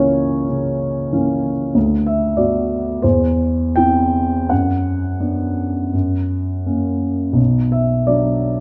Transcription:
grand piano
Already playing: C#2 E3 A#3 C#4 A#4 C#5
0.49 C#3
1.12 E3 A#3 C#4
1.75 D2
2.06 E5
2.37 B3 F#4 D5
3.02 E2 C5
3.76 C4 E4 G5
4.49 F#2 F#5
5.20 B3 D4
5.93 F#2
6.66 A#3 C#4
7.33 B1
7.72 E5
8.07 F#3 B3 D4 D5

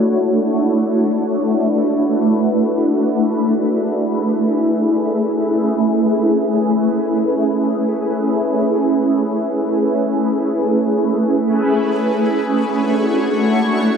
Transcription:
ambient pad
Already playing: A3 D4 E4 F#4 C#5
0.77 B4
2.63 G#4
4.48 C#4 B4
11.92 A3 D4 E4 F#4 C#5

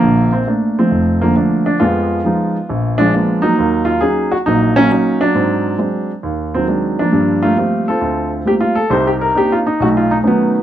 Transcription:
grand piano
Already playing: D3 F3 A#3
0.03 A#1
0.32 C4
0.47 A3 A#3 D4
0.79 F3 A3 C4
0.91 F1
1.21 D3 F3 A#3
1.36 A3 A#3 D4
1.66 D4
1.80 F2 F3 G#3 B3 F4
2.25 F3 G#3 D#4
2.69 A#1
2.98 F3 G#3 D4
3.14 G#3 A#3 B3 D4
3.42 F#3 A#3 D#4
3.59 D#2
3.85 F4
4.01 F#3 C#4 D#4 G#4
4.32 F#4
4.46 A#1 F#3 A#3 D#4
4.76 F#3 A#3 C#4
4.91 F#3 C#4 D#4
5.21 F#3 D4
5.35 G#2 C4
5.78 F#3 G#3 C4 D4
6.23 D#2
6.55 D#3 F#3 C4
6.68 F#3 G#3 C4 D4
6.99 F3 A#3 D4
7.12 G2 G3
7.43 A3 A#3 F4
7.57 G3 A3 A#3 C4 F4
7.88 C4 F4 A4
8.01 D2
8.45 G3 A3 A#3 C4 F4 G4
8.61 F4
8.75 A4
8.90 C2 C3 D#4 G4 C5
9.07 G4
9.21 A#4
9.35 A#3 C4 D4 D#4 G4
9.52 F4
9.67 D#4
9.80 B1 A3 D#4 F#4
9.97 F4
10.11 D#4
10.23 F#3 A3 B3 C#4 D#4
10.27 D#3 B3

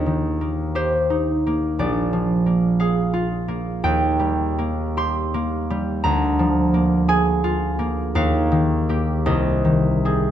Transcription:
harp
Already playing: D#2 A#3 D#5
0.06 D#3
0.41 A#3
0.75 G4 C5
1.10 D#4
1.47 A#3
1.79 A#1 D5
2.13 F3
2.46 A#3
2.80 G#4 F5
3.14 F4
3.48 A#3
3.84 D#2 G5
4.19 G3
4.59 A#3
4.97 G4 C6
5.34 A#3
5.70 G3
6.04 D2 A#5
6.39 F3
6.74 A#3
7.08 G#4 G#5
7.44 F4
7.79 A#3
8.15 D#2 F5
8.52 D#3
8.89 A#3 G4
9.26 C2 D#5
9.65 D#3
10.05 C4 G#4

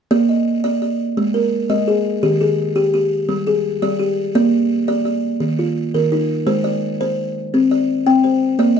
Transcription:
kalimba
0.11 A#3 D5
0.29 D#5
0.64 D5
0.82 D5
1.17 G#3
1.34 A#4
1.70 G#3 D#5
1.88 G#4
2.23 D#3 G4
2.41 G#4
2.76 G4
2.94 G4
3.29 G3
3.47 G#4
3.82 G3 D5
3.99 G4
4.35 A#3 D5
4.88 D5
5.05 D5
5.40 D#3
5.59 F4
5.94 D#3 A#4
6.12 D#4
6.47 G#3 C5
6.64 D5
7.01 C5
7.54 C4
7.71 D5
8.06 C4 G5
8.24 C5
8.59 A#3 D5
8.77 D#5

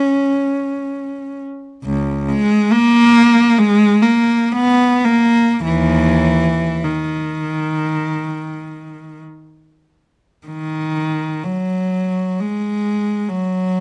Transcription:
cello
Already playing: C#4
1.84 C#2
2.29 G#3
2.72 A#3
3.58 G#3
4.02 A#3
4.52 B3
5.04 A#3
5.63 D#2 E3
6.84 D#3
10.47 D#3
11.44 F#3
12.40 G#3
13.29 F#3

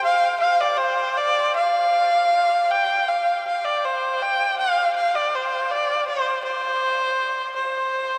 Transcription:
erhu
0.04 F5
0.40 F5
0.60 D5
0.78 C5
1.17 D5
1.56 F5
2.71 G5
3.08 F5
3.47 F5
3.65 D5
3.85 C5
4.22 G5
4.58 F5
4.96 F5
5.15 D5
5.35 C5
5.71 D5
6.07 C5
6.44 C5
7.56 C5

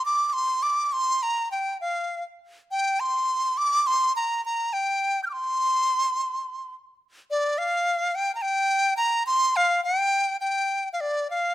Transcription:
dizi
0.05 D6
0.30 C6 D6
0.63 D6
0.93 C6
1.23 A#5
1.52 G5
1.81 F5
2.71 G5
3.00 C6
3.58 D6
3.87 C6
4.16 A#5
4.45 A#5
4.73 G5
5.23 F6 G6
5.30 C6 D6
7.31 D5
7.58 F5
8.15 G5
8.35 A#5
8.42 G5
8.97 A#5
9.26 C6
9.56 F5
9.84 G5
10.41 G5
10.93 F5
11.01 D5
11.30 F5

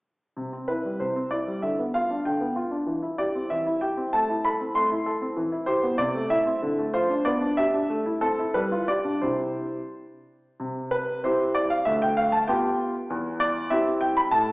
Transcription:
grand piano
0.37 C3
0.53 C4
0.68 E4 B4
0.85 G3
1.00 C3 C5
1.16 C4
1.31 E4 D5
1.47 G3
1.62 D3 E5
1.79 B3
1.94 F4 F5
2.11 D4
2.25 D3 G5
2.41 B3
2.56 F4
2.71 D4
2.87 E3
3.02 E4
3.18 G4 D5
3.35 C4
3.50 E3 E5
3.66 E4
3.81 G4 G5
3.97 C4
4.13 A3 A5
4.29 E4
4.45 A4 B5
4.61 C4
4.75 A3 C6
4.92 E4
5.06 A4
5.21 C4
5.37 E3
5.52 E4
5.66 G4 C5
5.83 B3
5.98 C3 D5
6.15 A3
6.30 E4 E5
6.46 C4
6.62 D3
6.78 A3
6.94 F4 C5
7.10 D4
7.25 B3 D5
7.41 D4
7.57 G4 E5
7.74 D4
7.90 A3
8.06 E4
8.21 C4 A4
8.39 E4
8.54 G3 B4
8.72 F4
8.88 G4 D5
9.05 D4
9.21 C3 E4 G4 C5
10.60 C3
10.91 B4
11.24 C4 E4 G4 C5
11.55 D5
11.70 F5
11.85 D2 E5
12.02 G5
12.17 F5
12.32 A5
12.48 B3 F4 G4 G5
13.10 E2
13.40 D5
13.70 C4 E4 G4 E5
14.01 G5
14.17 B5
14.31 A2 A5

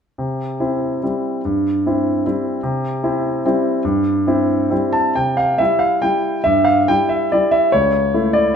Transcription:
grand piano
0.18 C3
0.60 C4 E4
1.03 G3 C4 E4
1.45 G2
1.86 C4 E4
2.26 G3 C4 E4
2.63 C3
3.03 C4 E4
3.45 G3 C4 E4
3.85 G2
4.27 C4 E4
4.71 G3 C4 E4
4.93 A5
5.15 C3 G5
5.37 F5
5.58 G3 E4 E5
5.79 F5
6.02 G3 E4 G5
6.44 G2 E5
6.65 F5
6.88 G3 E4 G5
7.09 E5
7.32 G3 E4 D5
7.51 E5
7.72 C#2 C#5
8.14 A3 E4
8.33 D5

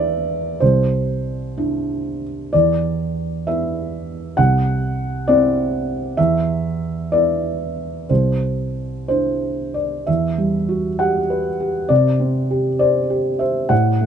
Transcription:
felt piano
Already playing: E2 B3 E4 D5 E5
0.60 C2 C5
1.57 D4 E4
2.53 E2 D5
3.47 B3 E4 E5
4.37 C2 F#5
5.28 C4 E4 D5
6.17 E2 E5
7.12 B3 E4 D5
8.09 C2 C5
9.08 D4 E4 C5
9.74 D5
10.07 E2 E5
10.38 G3
10.69 F#4
10.99 G4 F#5
11.30 B4
11.60 G4
11.89 C3 D5
12.20 C4
12.51 G4
12.79 C5 D5
13.10 G4
13.39 C5 E5
13.69 A2 F#5
14.01 A3

